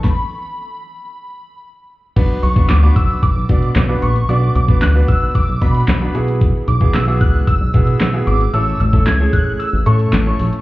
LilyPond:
<<
  \new Staff \with { instrumentName = "Synth bell" } { \time 4/4 \key b \mixolydian \tempo 4 = 113 b''2. r4 | \key b \dorian r8 cis'''8 d'''8 e'''8 d'''4. cis'''8 | d'''8 d'''8 fis'''8 e'''8 d'''8 b''4 r8 | r8 d'''8 e'''8 fis'''8 e'''4. d'''8 |
e'''8 e'''8 gis'''8 fis'''8 e'''8 cis'''4 r8 | }
  \new Staff \with { instrumentName = "Grand piano" } { \time 4/4 \key b \mixolydian r1 | \key b \dorian <b d' fis' b'>8 r16 <b d' fis' b'>16 r16 <b d' fis' b'>8. r8 <b d' fis' d''>8 r16 <b d' fis' b'>8 r16 | <b d' fis' d''>8 r16 <b d' fis' b'>16 r16 <b d' fis' b'>8. r8 <b d' fis' b'>8 r16 <b d' fis' b'>16 <b e' fis' gis'>8~ | <b e' fis' gis'>8 r16 <b e' fis' gis'>16 r16 <b e' fis' gis'>8. r8 <b e' fis' gis'>8 r16 <b e' fis' gis'>8 r16 |
<a cis' e' a'>8 r16 <a cis' e' a'>16 r16 <a cis' e' gis'>8. r8 <a cis' e' a'>8 r16 <a cis' e' a'>8 r16 | }
  \new Staff \with { instrumentName = "Analog synth bass" } { \clef bass \time 4/4 \key b \mixolydian r1 | \key b \dorian b,,8 b,,8 d,8 b,,8 r16 b,,16 b,8 b,,8 ais,,8 | b,,8 b,,8 d,8 b,,8 r16 b,,16 b,8 b,,8 b,,8~ | b,,8 b,,8 b,,8 cis,8 r16 b,,16 b,8 b,,8 gis,,8 |
a,,8 a,,8 cis,8 a,,8 r16 a,,16 a,8 a,,8 ais,,16 r16 | }
  \new DrumStaff \with { instrumentName = "Drums" } \drummode { \time 4/4 <bd sn>4 r4 r4 r4 | <cymc hh bd>8 hh16 bd16 <hc hh sn>8 <hh bd>8 <hh bd>8 <hh bd>16 hh16 <hc hh sn>8 hh16 hh16 | hh8 hh16 bd16 <hc hh sn>8 <hh bd>8 <hh bd>8 <hh bd>16 hh16 <hc hh sn>8 hh16 hh16 | <hh bd>8 hh16 bd16 <hc hh sn>8 <hh bd>8 <hh bd>8 <hh bd>16 hh16 <hc hh sn>8 hh16 hh16 |
hh8 hh16 bd16 <hc hh sn>8 <hh bd>8 hh8 hh16 hh16 <hc hh sn>8 hho16 hh16 | }
>>